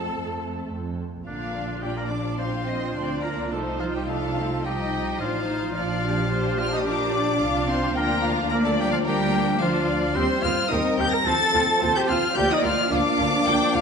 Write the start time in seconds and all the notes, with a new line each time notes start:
Already playing: F3 A3 C4 A4 A5
0.12 F2
0.70 F2
1.26 A#1 D3 F3 A#3 D4 F4 D5 F5
1.54 D4
1.83 G3 G4 D5 G5
1.97 A#3 A#4 A#5
2.11 D4 D5 D6
2.38 C4 F4 C5 F5 C6
2.67 F4 D#5
2.95 D2 D4 D5
3.22 A#3 D4 A#4 A#5
3.50 C2 F3 A3 D#4 F4 A4 C5 A5
3.79 F3 F4 F5
3.92 G3 G4 G5
4.08 F3 A3 D4 D#4 A4 F5 A5
4.37 C4
4.64 G3 D#4 G4 D#5 G5
4.92 D#4
5.20 A1 F3 D4 D#4 F4 C5 F5
5.47 D#4
5.75 A#1 F3 D4 F4 D5 F5
6.02 G4
6.30 D4 C5
6.58 F4 F5 F6
6.73 D#4 D#5 D#6
6.85 F3 D4 F4 A#4 D5 D6
7.12 F4 D5
7.40 C2 D4 F4 F5
7.67 C4 C5 C6
7.94 D2 F3 A#3 D4 F4 A#4 G5 A#5
8.23 F5
8.49 F3 A#3 D4 A#4 D5 A#5
8.64 A3 A4 A5
8.78 G3 G4 G5
8.92 F3 F4 F5
9.05 G3 A#3 D4 G4 A#4 G5
9.59 F3 D4 F4 C5 F5
9.87 D5
10.14 D#2 G3 C4 G4 C5 C6
10.43 D#2 C4 F4 G4 F5 F6
10.70 D#2 G3 C4 D#4 G4 A#4 D#5 D#6
10.98 D#2 C4 G4 G5 G6
11.12 A#4 A#5 A#6
11.25 D#2 F3 C4 F4 A4 A5 A6
11.52 D#2 C4 F4
11.80 D#2 C4 F4 C5
11.96 G4 G5 G6
12.07 D#2 C4 F4 F5 F6
12.35 D2 F3 A#3 F4 G4 D5 G5 G6
12.51 D#4 D#5 D#6
12.62 D2 A#3 F4 F5 F6
12.90 D2 F3 A#3 D4 F4 D5 F5 D6
13.19 D2 A#3 F4
13.45 D2 A#3 F4 G5
13.74 D2 A#3 F4 F5